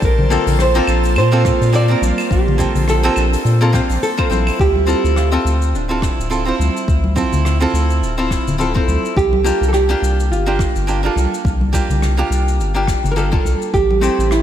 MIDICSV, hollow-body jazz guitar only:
0, 0, Header, 1, 2, 480
1, 0, Start_track
1, 0, Key_signature, -1, "minor"
1, 0, Tempo, 571429
1, 20, Time_signature, 4, 2, 24, 8
1, 12117, End_track
2, 0, Start_track
2, 0, Title_t, "Hollow-body jazz guitar"
2, 0, Program_c, 0, 26
2, 255, Note_on_c, 0, 58, 99
2, 259, Note_on_c, 0, 60, 82
2, 264, Note_on_c, 0, 65, 84
2, 268, Note_on_c, 0, 69, 105
2, 601, Note_off_c, 0, 58, 0
2, 604, Note_off_c, 0, 60, 0
2, 606, Note_off_c, 0, 65, 0
2, 608, Note_off_c, 0, 69, 0
2, 630, Note_on_c, 0, 58, 104
2, 633, Note_on_c, 0, 60, 95
2, 637, Note_on_c, 0, 65, 94
2, 643, Note_on_c, 0, 69, 113
2, 1081, Note_off_c, 0, 58, 0
2, 1082, Note_off_c, 0, 60, 0
2, 1084, Note_off_c, 0, 65, 0
2, 1087, Note_off_c, 0, 69, 0
2, 1106, Note_on_c, 0, 58, 91
2, 1111, Note_on_c, 0, 60, 80
2, 1116, Note_on_c, 0, 65, 82
2, 1119, Note_on_c, 0, 69, 93
2, 1430, Note_off_c, 0, 58, 0
2, 1433, Note_off_c, 0, 60, 0
2, 1435, Note_off_c, 0, 65, 0
2, 1437, Note_off_c, 0, 69, 0
2, 1449, Note_on_c, 0, 58, 83
2, 1453, Note_on_c, 0, 60, 80
2, 1457, Note_on_c, 0, 65, 76
2, 1462, Note_on_c, 0, 69, 85
2, 1559, Note_off_c, 0, 58, 0
2, 1561, Note_off_c, 0, 60, 0
2, 1563, Note_off_c, 0, 65, 0
2, 1565, Note_off_c, 0, 69, 0
2, 1581, Note_on_c, 0, 58, 77
2, 1589, Note_on_c, 0, 60, 75
2, 1598, Note_on_c, 0, 65, 72
2, 1606, Note_on_c, 0, 70, 86
2, 2147, Note_off_c, 0, 58, 0
2, 2152, Note_off_c, 0, 60, 0
2, 2156, Note_off_c, 0, 65, 0
2, 2160, Note_off_c, 0, 70, 0
2, 2167, Note_on_c, 0, 58, 91
2, 2174, Note_on_c, 0, 60, 82
2, 2175, Note_on_c, 0, 65, 81
2, 2182, Note_on_c, 0, 69, 87
2, 2518, Note_off_c, 0, 58, 0
2, 2520, Note_off_c, 0, 60, 0
2, 2522, Note_off_c, 0, 65, 0
2, 2524, Note_off_c, 0, 69, 0
2, 2548, Note_on_c, 0, 58, 97
2, 2553, Note_on_c, 0, 60, 98
2, 2557, Note_on_c, 0, 65, 90
2, 2562, Note_on_c, 0, 69, 109
2, 3000, Note_off_c, 0, 58, 0
2, 3002, Note_off_c, 0, 60, 0
2, 3004, Note_off_c, 0, 65, 0
2, 3007, Note_off_c, 0, 69, 0
2, 3030, Note_on_c, 0, 58, 84
2, 3038, Note_on_c, 0, 60, 74
2, 3039, Note_on_c, 0, 65, 84
2, 3043, Note_on_c, 0, 69, 100
2, 3117, Note_off_c, 0, 58, 0
2, 3118, Note_off_c, 0, 60, 0
2, 3121, Note_off_c, 0, 65, 0
2, 3123, Note_off_c, 0, 69, 0
2, 3130, Note_on_c, 0, 58, 89
2, 3134, Note_on_c, 0, 60, 83
2, 3140, Note_on_c, 0, 65, 84
2, 3144, Note_on_c, 0, 72, 103
2, 3479, Note_off_c, 0, 58, 0
2, 3481, Note_off_c, 0, 60, 0
2, 3484, Note_off_c, 0, 65, 0
2, 3486, Note_off_c, 0, 72, 0
2, 3507, Note_on_c, 0, 58, 77
2, 3511, Note_on_c, 0, 60, 72
2, 3516, Note_on_c, 0, 65, 67
2, 3519, Note_on_c, 0, 72, 91
2, 3590, Note_off_c, 0, 58, 0
2, 3592, Note_off_c, 0, 60, 0
2, 3595, Note_off_c, 0, 65, 0
2, 3597, Note_off_c, 0, 72, 0
2, 3609, Note_on_c, 0, 60, 71
2, 3614, Note_on_c, 0, 64, 71
2, 3619, Note_on_c, 0, 65, 71
2, 3623, Note_on_c, 0, 72, 86
2, 4070, Note_off_c, 0, 60, 0
2, 4072, Note_off_c, 0, 64, 0
2, 4075, Note_off_c, 0, 65, 0
2, 4077, Note_off_c, 0, 72, 0
2, 4087, Note_on_c, 0, 60, 82
2, 4092, Note_on_c, 0, 64, 77
2, 4096, Note_on_c, 0, 65, 80
2, 4101, Note_on_c, 0, 69, 94
2, 4437, Note_off_c, 0, 60, 0
2, 4440, Note_off_c, 0, 64, 0
2, 4442, Note_off_c, 0, 65, 0
2, 4445, Note_off_c, 0, 69, 0
2, 4466, Note_on_c, 0, 60, 92
2, 4471, Note_on_c, 0, 76, 84
2, 4475, Note_on_c, 0, 65, 85
2, 4480, Note_on_c, 0, 69, 94
2, 4919, Note_off_c, 0, 60, 0
2, 4921, Note_off_c, 0, 76, 0
2, 4923, Note_off_c, 0, 65, 0
2, 4926, Note_off_c, 0, 69, 0
2, 4948, Note_on_c, 0, 60, 76
2, 4956, Note_on_c, 0, 64, 58
2, 4959, Note_on_c, 0, 65, 69
2, 4964, Note_on_c, 0, 69, 85
2, 5272, Note_off_c, 0, 60, 0
2, 5273, Note_off_c, 0, 64, 0
2, 5277, Note_off_c, 0, 65, 0
2, 5279, Note_off_c, 0, 69, 0
2, 5290, Note_on_c, 0, 60, 77
2, 5297, Note_on_c, 0, 64, 58
2, 5297, Note_on_c, 0, 65, 75
2, 5302, Note_on_c, 0, 69, 84
2, 5399, Note_off_c, 0, 60, 0
2, 5401, Note_off_c, 0, 64, 0
2, 5403, Note_off_c, 0, 65, 0
2, 5405, Note_off_c, 0, 69, 0
2, 5421, Note_on_c, 0, 60, 73
2, 5430, Note_on_c, 0, 64, 70
2, 5439, Note_on_c, 0, 65, 64
2, 5447, Note_on_c, 0, 72, 81
2, 5988, Note_off_c, 0, 60, 0
2, 5992, Note_off_c, 0, 64, 0
2, 5997, Note_off_c, 0, 65, 0
2, 6001, Note_off_c, 0, 72, 0
2, 6012, Note_on_c, 0, 60, 91
2, 6017, Note_on_c, 0, 64, 83
2, 6022, Note_on_c, 0, 65, 80
2, 6028, Note_on_c, 0, 69, 81
2, 6360, Note_off_c, 0, 60, 0
2, 6362, Note_off_c, 0, 64, 0
2, 6365, Note_off_c, 0, 65, 0
2, 6367, Note_off_c, 0, 69, 0
2, 6388, Note_on_c, 0, 60, 91
2, 6393, Note_on_c, 0, 64, 74
2, 6396, Note_on_c, 0, 65, 85
2, 6402, Note_on_c, 0, 69, 106
2, 6840, Note_off_c, 0, 60, 0
2, 6842, Note_off_c, 0, 64, 0
2, 6844, Note_off_c, 0, 65, 0
2, 6847, Note_off_c, 0, 69, 0
2, 6868, Note_on_c, 0, 60, 85
2, 6873, Note_on_c, 0, 64, 73
2, 6877, Note_on_c, 0, 65, 74
2, 6882, Note_on_c, 0, 69, 87
2, 7191, Note_off_c, 0, 60, 0
2, 7193, Note_off_c, 0, 64, 0
2, 7196, Note_off_c, 0, 65, 0
2, 7198, Note_off_c, 0, 69, 0
2, 7209, Note_on_c, 0, 60, 76
2, 7213, Note_on_c, 0, 64, 74
2, 7218, Note_on_c, 0, 65, 69
2, 7222, Note_on_c, 0, 69, 85
2, 7319, Note_off_c, 0, 60, 0
2, 7321, Note_off_c, 0, 64, 0
2, 7323, Note_off_c, 0, 65, 0
2, 7325, Note_off_c, 0, 69, 0
2, 7346, Note_on_c, 0, 60, 77
2, 7351, Note_on_c, 0, 64, 67
2, 7356, Note_on_c, 0, 65, 73
2, 7363, Note_on_c, 0, 72, 74
2, 7682, Note_off_c, 0, 60, 0
2, 7685, Note_off_c, 0, 64, 0
2, 7688, Note_off_c, 0, 65, 0
2, 7689, Note_off_c, 0, 72, 0
2, 7933, Note_on_c, 0, 58, 91
2, 7940, Note_on_c, 0, 62, 70
2, 7942, Note_on_c, 0, 65, 78
2, 7946, Note_on_c, 0, 67, 100
2, 8281, Note_off_c, 0, 58, 0
2, 8283, Note_off_c, 0, 62, 0
2, 8285, Note_off_c, 0, 65, 0
2, 8287, Note_off_c, 0, 67, 0
2, 8306, Note_on_c, 0, 58, 93
2, 8312, Note_on_c, 0, 62, 87
2, 8317, Note_on_c, 0, 65, 83
2, 8321, Note_on_c, 0, 67, 104
2, 8759, Note_off_c, 0, 58, 0
2, 8762, Note_off_c, 0, 62, 0
2, 8764, Note_off_c, 0, 65, 0
2, 8766, Note_off_c, 0, 67, 0
2, 8790, Note_on_c, 0, 58, 87
2, 8792, Note_on_c, 0, 62, 79
2, 8798, Note_on_c, 0, 65, 74
2, 8801, Note_on_c, 0, 67, 87
2, 9112, Note_off_c, 0, 58, 0
2, 9114, Note_off_c, 0, 62, 0
2, 9115, Note_off_c, 0, 65, 0
2, 9118, Note_off_c, 0, 67, 0
2, 9131, Note_on_c, 0, 58, 76
2, 9135, Note_on_c, 0, 62, 72
2, 9140, Note_on_c, 0, 65, 71
2, 9144, Note_on_c, 0, 67, 84
2, 9240, Note_off_c, 0, 58, 0
2, 9242, Note_off_c, 0, 62, 0
2, 9244, Note_off_c, 0, 65, 0
2, 9246, Note_off_c, 0, 67, 0
2, 9265, Note_on_c, 0, 58, 73
2, 9273, Note_on_c, 0, 62, 69
2, 9282, Note_on_c, 0, 65, 72
2, 9290, Note_on_c, 0, 69, 86
2, 9829, Note_off_c, 0, 58, 0
2, 9833, Note_off_c, 0, 62, 0
2, 9838, Note_off_c, 0, 65, 0
2, 9842, Note_off_c, 0, 69, 0
2, 9850, Note_on_c, 0, 58, 84
2, 9854, Note_on_c, 0, 62, 79
2, 9858, Note_on_c, 0, 65, 81
2, 9863, Note_on_c, 0, 67, 98
2, 10199, Note_off_c, 0, 58, 0
2, 10201, Note_off_c, 0, 62, 0
2, 10203, Note_off_c, 0, 65, 0
2, 10205, Note_off_c, 0, 67, 0
2, 10226, Note_on_c, 0, 58, 82
2, 10232, Note_on_c, 0, 62, 73
2, 10236, Note_on_c, 0, 65, 82
2, 10239, Note_on_c, 0, 67, 103
2, 10679, Note_off_c, 0, 58, 0
2, 10681, Note_off_c, 0, 62, 0
2, 10684, Note_off_c, 0, 65, 0
2, 10685, Note_off_c, 0, 67, 0
2, 10705, Note_on_c, 0, 58, 80
2, 10711, Note_on_c, 0, 62, 70
2, 10716, Note_on_c, 0, 65, 69
2, 10720, Note_on_c, 0, 67, 91
2, 11030, Note_off_c, 0, 58, 0
2, 11032, Note_off_c, 0, 62, 0
2, 11035, Note_off_c, 0, 65, 0
2, 11037, Note_off_c, 0, 67, 0
2, 11054, Note_on_c, 0, 58, 81
2, 11058, Note_on_c, 0, 62, 68
2, 11062, Note_on_c, 0, 65, 68
2, 11068, Note_on_c, 0, 67, 68
2, 11161, Note_off_c, 0, 58, 0
2, 11163, Note_off_c, 0, 62, 0
2, 11166, Note_off_c, 0, 65, 0
2, 11167, Note_off_c, 0, 67, 0
2, 11185, Note_on_c, 0, 58, 71
2, 11191, Note_on_c, 0, 62, 68
2, 11195, Note_on_c, 0, 65, 70
2, 11202, Note_on_c, 0, 69, 69
2, 11522, Note_off_c, 0, 58, 0
2, 11525, Note_off_c, 0, 62, 0
2, 11528, Note_off_c, 0, 65, 0
2, 11529, Note_off_c, 0, 69, 0
2, 11771, Note_on_c, 0, 57, 81
2, 11775, Note_on_c, 0, 60, 82
2, 11780, Note_on_c, 0, 64, 78
2, 11784, Note_on_c, 0, 67, 98
2, 12117, Note_off_c, 0, 57, 0
2, 12117, Note_off_c, 0, 60, 0
2, 12117, Note_off_c, 0, 64, 0
2, 12117, Note_off_c, 0, 67, 0
2, 12117, End_track
0, 0, End_of_file